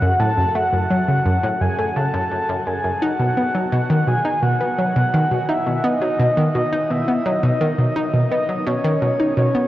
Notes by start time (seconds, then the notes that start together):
Already playing: F#5
0.02 F#2
0.20 A2 A5
0.37 F#2
0.55 A3 F#5
0.73 F#2
0.91 F#3
1.08 C#3
1.26 F#2
1.43 A2
1.61 F#2 G#5
1.79 A3
1.96 C#3 A5
2.14 F#2
2.31 F#2
2.49 F#2
2.60 A5
2.67 F#2 G#5
2.84 F#2
3.02 D#4 F#5
3.20 B2
3.37 B3
3.55 F#3
3.73 B2 F#5
3.91 D#3
4.08 B2 G#5
4.25 D#4
4.43 B2 F#5
4.61 B3
4.79 F#3
4.96 B2
5.14 D#3
5.31 B2
5.49 D#4 E5
5.67 B2
5.84 B3 D#5
6.02 F#3
6.20 B2
6.37 D#3
6.55 B2 D#5
6.72 D#4
6.90 B2 E5
7.08 B3
7.26 F#3 D#5
7.43 B2
7.61 D#3
7.78 B2
7.96 D#4
8.14 B2
8.32 B3 D#5
8.49 F#3
8.67 B2 C#5
8.84 D#3
9.02 B2
9.20 D#4
9.37 B2 C#5
9.55 B3